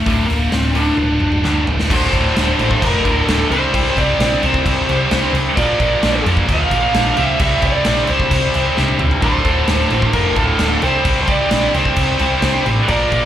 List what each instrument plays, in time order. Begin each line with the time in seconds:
Already playing: lead electric guitar A3
0.06 fingered electric bass D1, overdriven electric guitar D2 A2 D3, distorted electric guitar A3 F4, kick, open hi-hat
0.26 fingered electric bass D1, lead electric guitar A#3, open hi-hat
0.49 fingered electric bass D1, lead electric guitar C4, snare, open hi-hat
0.72 overdriven electric guitar D2 A2, distorted electric guitar A3 F4, lead electric guitar D4, open hi-hat
0.76 overdriven electric guitar D3
0.97 fingered electric bass D1, high tom
1.20 fingered electric bass D1, mid tom
1.32 mid tom
1.44 overdriven electric guitar D2 A2 D3, fingered electric bass D2, snare
1.67 fingered electric bass D1, floor tom
1.79 snare
1.90 fingered electric bass D1, overdriven electric guitar D2 A2 D3, distorted electric guitar A3 F4, lead electric guitar C5, kick, crash
2.13 fingered electric bass D1, overdriven electric guitar D2 A2 D3, kick, crash
2.36 fingered electric bass D1, overdriven electric guitar D2 A2 D3, snare, crash
2.59 fingered electric bass A1, overdriven electric guitar D2 A2 D3, crash
2.71 kick
2.81 fingered electric bass F1, overdriven electric guitar D2 A2 D3, lead electric guitar A#4, kick, crash
3.04 fingered electric bass D1, overdriven electric guitar D2 A2 D3, lead electric guitar A4, kick, crash
3.27 fingered electric bass D1, overdriven electric guitar D2 A2 D3, snare, crash
3.50 fingered electric bass C2, overdriven electric guitar C3 G3 C4, distorted electric guitar E4 G4 C5, lead electric guitar C5, crash
3.74 fingered electric bass C2, overdriven electric guitar C3 G3 C4, kick, crash
3.91 lead electric guitar C5
3.96 fingered electric bass C2, overdriven electric guitar C3 G3 C4, lead electric guitar D5, kick, crash
4.19 fingered electric bass A#1, overdriven electric guitar C3 G3 C4, snare, crash
4.43 fingered electric bass C2, overdriven electric guitar C3 G3 C4, lead electric guitar C5, crash
4.54 kick
4.65 fingered electric bass C2, overdriven electric guitar C3 G3 C4, kick, crash
4.89 fingered electric bass C2, overdriven electric guitar C3 G3 C4, crash
5.11 fingered electric bass C2, overdriven electric guitar C3 G3 C4, distorted electric guitar E4 G4 C5, snare, crash
5.33 fingered electric bass C2, overdriven electric guitar C3 G3 C4, crash
5.56 fingered electric bass A#1, overdriven electric guitar A#2 F3 A#3, distorted electric guitar D4 F4 A#4, lead electric guitar D5, kick, crash
5.80 fingered electric bass A#1, overdriven electric guitar A#2 F3 A#3, kick, crash
6.02 fingered electric bass A#1, overdriven electric guitar A#2 F3 A#3, snare, crash
6.24 fingered electric bass F2, overdriven electric guitar A#2 F3 A#3, crash
6.37 kick
6.47 fingered electric bass D2, overdriven electric guitar A#2 F3 A#3, kick, crash
6.53 lead electric guitar F5
6.71 fingered electric bass A#1, overdriven electric guitar A#2 F3 A#3, kick, crash
6.93 fingered electric bass A#1, overdriven electric guitar A#2 F3 A#3, snare, crash
7.16 fingered electric bass C2, overdriven electric guitar C3 G3 C4, distorted electric guitar E4 G4 C5, lead electric guitar E5, crash
7.39 fingered electric bass C2, overdriven electric guitar C3 G3 C4, lead electric guitar E5, kick, crash
7.61 fingered electric bass C2, overdriven electric guitar C3 G3 C4, lead electric guitar D5, kick, crash
7.85 fingered electric bass A#1, overdriven electric guitar C3 G3 C4, snare, crash
7.97 snare
8.07 fingered electric bass C2, overdriven electric guitar C3 G3 C4, lead electric guitar C5, crash
8.20 kick
8.31 fingered electric bass C2, overdriven electric guitar C3 G3 C4, kick, crash
8.54 fingered electric bass C2, overdriven electric guitar C3 G3 C4, crash
8.77 fingered electric bass C2, overdriven electric guitar C3 G3 C4, distorted electric guitar E4 G4 C5, snare
8.88 high tom
8.99 fingered electric bass C#2, overdriven electric guitar C3 G3 C4, mid tom
9.11 floor tom
9.21 fingered electric bass D1, overdriven electric guitar D2 A2 D3, distorted electric guitar A3 F4, lead electric guitar A4 C5, kick, crash
9.44 fingered electric bass D1, overdriven electric guitar D2 A2 D3, kick, crash
9.67 fingered electric bass D1, overdriven electric guitar D2 A2 D3, snare, crash
9.80 snare
9.90 fingered electric bass A1, overdriven electric guitar D2 A2 D3, crash
10.02 kick
10.13 fingered electric bass F1, overdriven electric guitar D2 A2 D3, lead electric guitar F4 A#4, kick, crash
10.36 fingered electric bass D1, overdriven electric guitar D2 A2 D3, lead electric guitar F4 A4, kick, crash
10.59 fingered electric bass D1, overdriven electric guitar D2 A2 D3, snare, crash
10.82 fingered electric bass C2, overdriven electric guitar C3 G3 C4, distorted electric guitar E4 G4 C5, lead electric guitar G4 C5, crash
11.04 fingered electric bass C2, overdriven electric guitar C3 G3 C4, kick, crash
11.21 lead electric guitar A4 C5
11.27 fingered electric bass C2, overdriven electric guitar C3 G3 C4, lead electric guitar G4 D5, kick, crash
11.51 fingered electric bass A#1, overdriven electric guitar C3 G3 C4, snare, crash
11.74 fingered electric bass C2, overdriven electric guitar C3 G3 C4, lead electric guitar G4 C5, crash
11.85 kick
11.96 fingered electric bass C2, overdriven electric guitar C3 G3 C4, kick, crash
12.19 fingered electric bass C2, overdriven electric guitar C3 G3 C4, crash
12.42 fingered electric bass C2, overdriven electric guitar C3 G3 C4, distorted electric guitar E4 G4 C5, snare, crash
12.66 fingered electric bass A1, overdriven electric guitar C3 G3 C4, crash
12.88 fingered electric bass A#1, overdriven electric guitar A#2 F3 A#3, distorted electric guitar D4 F4, lead electric guitar A#4 D5, kick, crash
12.92 distorted electric guitar A#4
13.12 fingered electric bass A#1, overdriven electric guitar A#2 F3 A#3, kick, crash